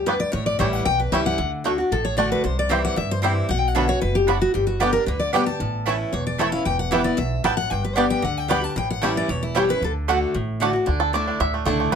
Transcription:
Already playing: D2
0.06 G2 G3 B3 D4 B4
0.20 D5
0.32 A1 A2 C#5
0.46 D5
0.59 A1 E3 G3 C#4 E4 E5
0.73 F#5
0.85 B1 E2 G5
1.00 B4
1.12 C#2 E3 G3 C#4 E4 E5
1.26 F#5
1.38 D2 D3
1.64 D3 A3 D4 F#4
1.78 D4 F#4
1.91 A1 A2 A4
2.05 C#5
2.17 D3 A3 D4 F#4 D5
2.32 B4
2.44 C2 C3 C5
2.59 D5
2.69 E3 G3 C4 E4 C5 E5 G5
2.85 F#5
2.96 G2 E5
3.11 C5
3.22 E3 G3 C4 E4 C5 G5
3.49 B1 B2 F#5
3.59 G5
3.68 F#5
3.75 D3 B3 C#4 D4 F#4 C#5 E5 B5
3.88 C#4 F#4 C#5
4.01 F#1 B2 B4
4.15 G4
4.27 A2 B3 D4 E4 F#4 C#5 B5
4.42 F#4
4.54 G1 G2 G4
4.67 F#4
4.80 G3 B3 D4 G4 A4 D5 G5
4.93 D4 G4 A#4
5.06 D2 D3 B4
5.19 D5
5.33 G3 B3 D4 G4 D5 G5
5.46 D4 G4 A5
5.60 A1 A2
5.86 E3 A3 C#4 E4 C#5 A5
6.13 E1 E2 C#5
6.27 D5
6.38 E3 A3 C#4 E4 C#5 E5 A5
6.52 C#4 E4 F5
6.65 E1 E2 G5
6.79 F#5
6.91 E3 G3 B3 E4 B4 E5 G5
7.04 B3 E4 D5
7.17 B1 E2 E5
7.44 A1 F#2 G3 B3 E4 B4 G5 A5
7.57 F#5
7.70 G1 G2 G5
7.84 B4
7.96 G3 B3 D4 G4 D5 G5
8.10 G5
8.22 D2 D3 F#5
8.37 G5
8.48 G3 B3 D4 G4 D5 G5 B5
8.61 D4 G4 A5
8.76 A1 A2 G5
8.90 F#5
9.01 E3 G3 A3 C#4 E4 C#5 E5 G5
9.17 D5
9.28 E1 E2 C#5
9.43 E4
9.55 E3 G3 A3 C#4 E4 G4 C#5 G5
9.69 C#4 E4 B4
9.81 D2 D3 A4
10.08 D3 A3 D4 F#4 D5 F#5
10.35 A1 A2
10.60 D3 A3 D4 F#4 D5 F#5
10.73 D4 F#4
10.86 D2 D3 D4
11.00 A4
11.13 D3 A3 D4 E4 D5
11.28 D4
11.40 D2 A2 E5
11.54 A3
11.65 C#2 D3 A3 D4 E4 A4
11.80 A3
11.92 B1 B4

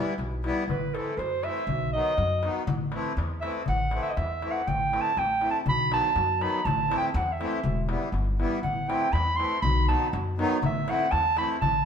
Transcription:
Already playing: E3 G3 B3 E4
0.18 B1, darbuka tek
0.32 darbuka tek
0.44 E3 G3 B3 E4, darbuka tek
0.57 darbuka tek
0.68 A1 B4, darbuka dum
0.94 E3 A3 C4 E4 A4, darbuka tek
1.08 darbuka tek
1.17 F#2 C5, darbuka tek
1.43 E3 A3 C4 E4 E5, darbuka tek
1.57 darbuka tek
1.67 B1, darbuka dum
1.93 D#3 F#3 B3 D#4 D#5
2.07 darbuka tek
2.17 F#2, darbuka tek
2.42 D#3 F#3 B3 D#4, darbuka tek
2.57 darbuka tek
2.67 A1, darbuka dum
2.92 E3 A3 C4 E4, darbuka tek
3.07 darbuka tek
3.17 E2, darbuka tek
3.41 E3 A3 C4 E4 E5, darbuka tek
3.55 darbuka tek
3.66 A1 F#5, darbuka dum
3.80 darbuka tek
3.91 E3 A3 C4 E4, darbuka tek
4.03 E5, darbuka tek
4.10 D#5
4.17 E2 E5, darbuka tek
4.42 E3 A3 C4 E4, darbuka tek
4.52 F#5
4.57 darbuka tek
4.67 A1 G5, darbuka dum
4.91 E3 A3 C4 E4, darbuka tek
5.01 A5
5.07 darbuka tek
5.17 A1 G5, darbuka tek
5.41 E3 A3 C4 E4, darbuka tek
5.51 A5
5.55 darbuka tek
5.66 B1 B5, darbuka dum
5.90 D#3 F#3 B3 D#4, darbuka tek
5.94 A5
6.06 darbuka tek
6.16 F#2, darbuka tek
6.40 D#3 F#3 B3 D#4 B5, darbuka tek
6.56 darbuka tek
6.65 A1 A5, darbuka dum
6.87 E3 A3 C4 E4
6.91 darbuka tek
6.98 G5
7.05 darbuka tek
7.14 E2 F#5, darbuka tek
7.32 E5
7.40 E3 A3 C4 E4, darbuka tek
7.54 darbuka tek
7.63 E1, darbuka dum
7.79 darbuka tek
7.88 E3 G3 B3 E4, darbuka tek
8.03 darbuka tek
8.12 G1, darbuka tek
8.39 E3 G3 B3 E4, darbuka tek
8.52 darbuka tek
8.63 A1 F#5, darbuka dum
8.87 E3 A3 C4 E4 G5, darbuka tek
9.04 darbuka tek
9.13 E2 B5, darbuka tek
9.37 E3 A3 C4 E4 C6, darbuka tek
9.54 darbuka tek
9.62 B1 B5, darbuka dum
9.87 D#3 F#3 B3 D#4 A5, darbuka tek
10.02 darbuka tek
10.13 F#2, darbuka tek
10.38 D#3 F#3 B3 D#4, darbuka tek
10.52 darbuka tek
10.62 A1 E5, darbuka dum
10.87 E3 A3 C4 E4 F#5, darbuka tek
11.01 darbuka tek
11.11 E2 A5, darbuka tek
11.37 E3 A3 C4 E4 B5, darbuka tek
11.50 darbuka tek
11.61 A1 A5, darbuka dum
11.75 darbuka tek

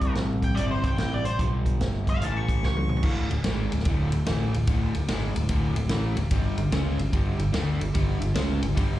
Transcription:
Already playing: C2 C3 G3 C4 D5
0.01 kick, closed hi-hat
0.15 A1, snare, closed hi-hat
0.42 G5, kick, closed hi-hat
0.55 G1 C3 G3 C4 D5, closed hi-hat
0.71 C5
0.83 C3 G3 C4 G5, kick, closed hi-hat
0.97 A1 G5, snare, closed hi-hat
1.14 D5
1.25 C5, closed hi-hat
1.37 B1 G2 D3 G3, kick, closed hi-hat
1.66 kick, closed hi-hat
1.80 G1, snare, closed hi-hat
2.07 F5, kick, closed hi-hat
2.21 A1 A2 E3 A3 A5, closed hi-hat
2.37 C#6
2.48 kick, closed hi-hat
2.63 C#2 C#6, snare
2.77 high tom
2.89 mid tom
2.97 floor tom
3.02 D1 D2 A2 D3, kick, crash
3.30 D1 D2 A2, ride
3.44 G#1 G#2 D#3 G#3, snare, ride
3.72 D1 D2 A2, ride
3.79 snare
3.85 D1 D2 A2 D3, kick, ride
4.12 D1 D2 A2, ride
4.26 A1 A2 E3 A3, snare, ride
4.53 D1 D2 A2, ride
4.67 D1 D2 A2 D3, kick, ride
4.95 D1 D2 A2, ride
5.08 G#1 G#2 D#3 G#3, snare, ride
5.36 D1 D2 A2, ride
5.49 D1 D2 A2 D3, kick, ride
5.75 D1 D2 A2, ride
5.89 A1 A2 E3 A3, snare, ride
6.16 D1 D2 A2, ride
6.31 G1 G2 D3 G3, kick, ride
6.56 G1 G2 D3, ride
6.71 C#2 C#3 G#3 C#4, snare, ride
6.98 G1 G2 D3, ride
7.12 G1 G2 D3 G3, kick, ride
7.38 G1 G2 D3, ride
7.52 D2 D3 A3 D4, snare, ride
7.79 G1 G2 D3, ride
7.94 G1 G2 D3 G3, kick, ride
8.20 G1 G2 D3, ride
8.34 C#2 C#3 G#3 C#4, snare, ride
8.62 G1 G2 D3, ride
8.75 G1 G2 D3 G3, kick, ride

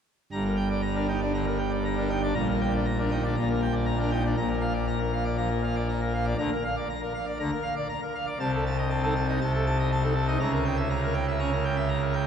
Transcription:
0.32 G1 G2 A#5
0.45 A#4
0.57 G5
0.69 D5
0.82 A#5
0.95 D4 A#4
1.08 D#4 G5
1.21 D4 D5
1.34 D3 A#5
1.46 A#4
1.59 G5
1.71 D5
1.85 A#5
1.97 D4 A#4
2.09 D#4 G5
2.23 D4 D5
2.34 A#1 A#2 A#5
2.49 A#4
2.61 G5
2.73 D5
2.85 A#5
2.98 D4 A#4
3.11 D#4 G5
3.23 D4 D5
3.36 A#1 A#2 A#5
3.49 A#4
3.62 G5
3.73 D5
3.86 A#5
3.99 D4 A#4
4.11 D#4 G5
4.24 D4 D5
4.36 A#1 A#2 A#5
4.50 A#4
4.61 F5
4.74 D5
4.88 A#5
4.99 A#4
5.13 F5
5.25 D5
5.37 F3 A#5
5.51 A#4
5.64 F5
5.76 D5
5.89 A#5
6.01 A#4
6.14 F5
6.25 D5
6.38 D2 D3 A#5
6.52 A#4
6.65 F5
6.77 D5
6.90 A#5
7.01 A#4
7.14 F5
7.27 D5
7.39 D2 D3 A#5
7.51 A#4
7.63 F5
7.76 D5
7.89 A#5
8.02 A#4
8.15 F5
8.27 D5
8.40 C2 C3 A5
8.53 A4
8.66 A5
8.78 D#5
8.90 A5
9.03 D#4 A4
9.15 A5
9.28 D#4 D#5
9.41 C2 C3 A5
9.54 A4
9.66 A5
9.79 D#5
9.92 A5
10.03 D#4 A4
10.15 A5
10.28 D#4 D#5
10.40 C#2 C#3 A#5
10.52 A#4
10.65 G5
10.77 E5
10.90 A#5
11.03 A#4
11.14 G5
11.28 E5
11.39 C#4 A#5
11.52 A#4
11.64 G5
11.77 E5
11.89 A#5
12.02 A#4
12.13 G5

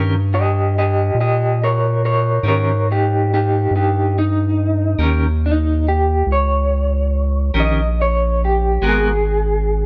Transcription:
Already playing: G2 D#3 C#4 G4 A#4
0.34 G4 D#5
0.78 G4 D#5
1.15 A#2
1.20 G4 D#5
1.64 A#4 C#5
2.05 A#4 C#5
2.43 G#2 D#3 C#4 G4 A#4
2.48 A#4 C#5
2.92 D#4 G4
3.34 D#4 G4
3.71 G2
3.76 D#4 G4
4.18 D#4
4.98 D#2 D#3 C#4 G4 A#4
5.46 D#4
5.88 G4
6.27 C#2
6.32 C#5
7.54 A#1 D#3 C#4 G4 A#4
7.60 D#5
8.02 C#5
8.45 G4
8.82 G#1 G#3 B3 F#4 A#4
8.89 G#4

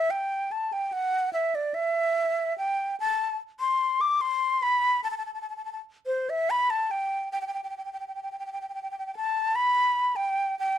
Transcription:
Already playing: E5
0.11 G5
0.52 A5
0.73 G5
0.93 F#5
1.33 E5
1.55 D5
1.74 E5
2.58 G5
3.00 A5
3.60 C6
4.01 D6
4.21 C6
4.63 B5
5.04 A5
5.11 A5
5.18 A5
5.26 A5
5.34 A5
5.42 A5
5.50 A5
5.57 A5
5.65 A5
5.73 A5
6.07 C5
6.30 E5
6.50 B5
6.70 A5
6.91 G5
7.32 G5
7.41 G5
7.47 G5
7.54 G5
7.63 G5
7.70 G5
7.77 G5
7.85 G5
7.93 G5
8.00 G5
8.08 G5
8.15 G5
8.23 G5
8.32 G5
8.39 G5
8.46 G5
8.52 G5
8.61 G5
8.69 G5
8.74 G5
8.82 G5
8.91 G5
8.99 G5
9.06 G5
9.14 G5 A5
9.56 B5
10.16 G5
10.59 G5

